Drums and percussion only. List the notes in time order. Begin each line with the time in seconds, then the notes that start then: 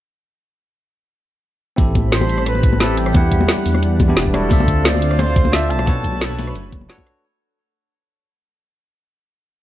1.78 kick, closed hi-hat, high conga
1.95 kick, closed hi-hat, muted conga, shaker
2.12 snare, closed hi-hat
2.21 muted conga, high conga
2.29 closed hi-hat, shaker
2.38 cross-stick
2.46 cross-stick, closed hi-hat
2.55 muted conga
2.63 kick, closed hi-hat, shaker
2.73 high conga
2.80 snare, closed hi-hat, muted conga
2.97 closed hi-hat, shaker
3.06 cross-stick
3.15 kick, closed hi-hat, muted conga, high conga
3.32 kick, closed hi-hat, shaker
3.41 muted conga
3.48 snare, closed hi-hat
3.57 high conga
3.66 open hi-hat, shaker
3.74 cross-stick, muted conga
3.83 closed hi-hat
4.00 kick, closed hi-hat, muted conga, shaker
4.09 high conga
4.17 snare, closed hi-hat
4.26 kick
4.34 cross-stick, closed hi-hat, muted conga, shaker
4.51 kick, closed hi-hat, high conga
4.60 muted conga
4.68 kick, closed hi-hat, shaker
4.85 snare, closed hi-hat
4.94 muted conga, high conga
5.02 closed hi-hat, shaker
5.11 cross-stick
5.19 cross-stick, closed hi-hat, muted conga
5.36 kick, closed hi-hat, shaker
5.45 high conga
5.53 snare, closed hi-hat, muted conga
5.70 closed hi-hat, shaker
5.79 cross-stick, muted conga
5.87 kick, closed hi-hat, high conga
6.04 kick, closed hi-hat, shaker
6.12 muted conga
6.21 snare, closed hi-hat, shaker
6.31 high conga
6.39 open hi-hat, muted conga, shaker
6.47 cross-stick
6.56 closed hi-hat
6.72 kick, closed hi-hat, muted conga, shaker
6.81 high conga
6.90 snare, closed hi-hat
6.98 kick, muted conga
7.07 cross-stick, closed hi-hat, shaker